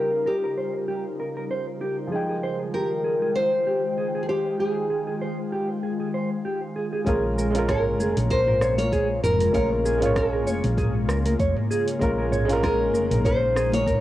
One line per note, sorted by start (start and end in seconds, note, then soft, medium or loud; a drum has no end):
0.00 2.07 C#3 medium
0.00 2.06 F3 medium
0.00 2.07 G3 medium
0.00 2.07 A#3 medium
0.00 2.08 C#4 medium
0.00 2.07 D#4 medium
0.00 2.09 D#4 medium
0.00 2.07 F4 medium
0.00 0.10 G4 medium
0.00 2.10 G4 medium
0.00 0.28 A#4 medium
0.00 2.08 A#4 medium
0.26 1.46 G4 medium
0.26 0.35 A#4 medium
0.44 0.51 A#4 medium
0.58 0.73 C5 medium
0.88 1.03 G4 medium
1.20 1.28 A#4 medium
1.37 1.44 A#4 medium
1.51 1.66 C5 medium
1.81 1.96 G4 medium
2.07 7.01 F3 medium
2.07 7.02 G#3 medium
2.12 7.02 D#3 medium
2.12 7.04 D#4 medium
2.12 7.03 F4 medium
2.12 2.21 G#4 medium
2.12 7.03 G5 medium
2.12 7.05 G5 medium
2.29 2.36 G#4 medium
2.43 2.58 C5 medium
2.74 2.89 G4 medium
2.74 3.35 A#4 medium
3.04 3.13 G#4 medium
3.22 3.29 G#4 medium
3.35 4.24 C5 loud
3.35 3.51 C5 medium
3.67 3.82 G4 loud
3.98 4.07 G#4 medium
4.15 4.22 G#4 medium
4.23 4.29 G#4 medium
4.29 4.60 G4 medium
4.29 4.44 C5 loud
4.60 4.75 G4 medium
4.60 6.41 G#4 medium
4.90 4.99 G#4 medium
5.07 5.15 G#4 medium
5.22 5.37 C5 medium
5.52 5.67 G4 medium
5.83 5.92 G#4 medium
6.00 6.07 G#4 medium
6.14 6.29 C5 loud
6.45 6.60 G4 medium
6.76 6.85 G#4 medium
6.93 7.00 G#4 medium
7.05 8.00 A#1 loud
7.05 14.01 C#3 medium
7.05 7.49 G#3 medium
7.05 14.01 G#3 medium
7.05 14.01 A#3 medium
7.05 7.50 C#4 medium
7.05 11.97 F4 medium
7.05 7.51 F4 medium
7.05 7.22 G#4 loud
7.05 7.51 A#4 loud
7.05 kick loud
7.05 open hi-hat soft
7.05 high conga medium
7.05 shaker soft
7.38 7.47 A#4 medium
7.38 shaker medium
7.50 9.49 G#3 loud
7.50 9.50 C#4 medium
7.55 9.51 F4 medium
7.55 7.62 A#4 medium
7.55 9.53 A#4 loud
7.55 open hi-hat medium
7.55 shaker soft
7.69 8.17 A#4 medium
7.69 7.84 C#5 medium
7.69 kick loud
7.69 cross-stick medium
7.69 mid tom medium
7.69 open hi-hat soft
7.69 shaker soft
8.00 8.13 F1 medium
8.00 8.15 G#4 medium
8.00 high conga medium
8.00 shaker medium
8.17 9.19 A#1 medium
8.17 8.30 G#4 medium
8.17 open hi-hat medium
8.17 low conga medium
8.17 shaker soft
8.30 8.40 A#4 medium
8.30 8.78 C5 loud
8.30 kick loud
8.30 open hi-hat soft
8.30 shaker soft
8.47 8.55 A#4 medium
8.47 mid tom medium
8.61 8.77 C#5 loud
8.61 cross-stick medium
8.61 shaker medium
8.78 9.23 C#5 loud
8.78 open hi-hat medium
8.78 high conga medium
8.78 shaker soft
8.92 9.08 G#4 loud
8.92 kick loud
8.92 open hi-hat soft
8.92 shaker soft
9.23 9.49 F1 loud
9.23 9.53 A#4 loud
9.23 9.32 A#4 medium
9.23 mid tom medium
9.23 shaker medium
9.40 9.48 A#4 medium
9.40 open hi-hat medium
9.40 shaker soft
9.52 10.47 A#1 loud
9.52 9.96 G#3 medium
9.52 9.97 C#4 medium
9.52 9.98 F4 medium
9.52 10.18 A#4 medium
9.52 9.99 A#4 loud
9.52 9.70 C#5 loud
9.52 kick loud
9.52 open hi-hat soft
9.52 high conga loud
9.52 shaker soft
9.85 10.00 G#4 loud
9.85 shaker medium
9.97 11.96 G#3 medium
9.97 11.97 C#4 medium
10.02 11.98 F4 medium
10.02 12.00 C#5 loud
10.02 mid tom medium
10.02 open hi-hat medium
10.02 shaker soft
10.16 11.36 G#4 medium
10.16 10.25 A#4 medium
10.16 kick loud
10.16 cross-stick medium
10.16 open hi-hat soft
10.16 shaker soft
10.33 10.40 A#4 medium
10.47 10.61 F1 medium
10.47 10.62 C#5 loud
10.47 high conga medium
10.47 shaker medium
10.64 11.09 A#1 medium
10.64 open hi-hat medium
10.64 low conga medium
10.64 shaker soft
10.78 10.93 G#4 medium
10.78 kick loud
10.78 mid tom medium
10.78 open hi-hat soft
10.78 shaker soft
11.09 11.34 C#2 loud
11.09 11.18 A#4 medium
11.09 cross-stick medium
11.09 shaker medium
11.26 11.33 A#4 medium
11.26 open hi-hat medium
11.26 high conga medium
11.26 shaker soft
11.39 11.53 F1 medium
11.39 11.55 C#5 loud
11.39 kick loud
11.39 open hi-hat soft
11.39 shaker soft
11.57 mid tom medium
11.71 11.86 G#4 loud
11.71 shaker medium
11.88 open hi-hat medium
11.88 shaker soft
11.99 12.94 A#1 loud
11.99 12.43 G#3 medium
11.99 12.45 C#4 medium
11.99 14.01 D#4 medium
11.99 12.45 F4 medium
11.99 12.10 A#4 medium
11.99 kick loud
11.99 open hi-hat soft
11.99 high conga loud
11.99 shaker soft
12.03 12.46 A#4 loud
12.18 12.26 A#4 medium
12.32 12.47 C#5 loud
12.32 mid tom medium
12.32 shaker medium
12.45 14.01 G#3 loud
12.45 14.01 C#4 loud
12.49 14.01 F4 medium
12.49 14.01 A#4 loud
12.49 open hi-hat medium
12.49 shaker soft
12.63 12.78 G#4 medium
12.63 13.26 A#4 medium
12.63 kick loud
12.63 cross-stick medium
12.63 open hi-hat soft
12.63 shaker soft
12.94 13.08 F1 medium
12.94 13.03 A#4 medium
12.94 high conga medium
12.94 shaker medium
13.11 14.01 A#1 medium
13.11 13.19 A#4 medium
13.11 mid tom medium
13.11 open hi-hat medium
13.11 low conga medium
13.11 shaker soft
13.25 13.70 C5 loud
13.25 13.40 C#5 loud
13.25 kick loud
13.25 open hi-hat soft
13.25 shaker soft
13.56 13.71 G#4 loud
13.56 cross-stick medium
13.56 shaker medium
13.72 14.01 C#5 loud
13.72 open hi-hat medium
13.72 high conga loud
13.72 shaker soft
13.87 13.96 A#4 medium
13.87 kick loud
13.87 mid tom medium
13.87 open hi-hat soft
13.87 shaker soft